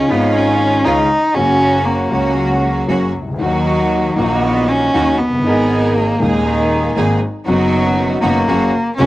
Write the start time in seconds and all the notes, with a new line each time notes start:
Already playing: C#4
0.08 G#1 G#2 D#3 G#3 B3 C#4 D#4 F4
0.12 F4
0.35 C#4
0.84 C#2 C#3 D#3 G#3 C#4 D#4 F4
1.35 F#1 F#2 C#3 F#3 A#3 C#4 F#4
1.39 F#4
1.85 A#3
2.10 C#2 C#3 F#3 A#3 C#4 F#4
2.37 F#3
2.63 F#3
2.88 F#1 F#2 C#3 F#3 A#3 C#4 F#4
3.14 C#2
3.21 C2
3.28 C#2
3.34 D2
3.39 D#2 D#3 F#3 A#3 D#4 F#4
4.16 A#1 A#2 D#3 F#3 A#3 D#4 F#4
4.20 F#4
4.43 B3
4.68 C#4
4.94 D#2 D#3 F#3 A#3 D#4 F#4
5.19 F#1 B3
5.27 F1
5.33 F#1
5.39 G1
5.44 G#1 G#2 D#3 G#3 D#4 G#4 A#4
5.48 G#4
5.95 A#3
6.19 D#1 D#2 D#3 G#3 A#3 D#4 G#4
6.23 G#4
6.46 D#3
6.96 G#1 G#2 D#3 G#3 A#3 D#4 G#4
7.46 F#1 F#2 D#3 F#3 B3 D#4 F#4
8.20 F#1 F#2 D#3 F#3 A#3 B3 D#4 F#4
8.48 F#1 F#2 C#3 F#3 A#3 C#4 F#4
8.97 C#2 C#3 F#3 A#3 C#4 F#4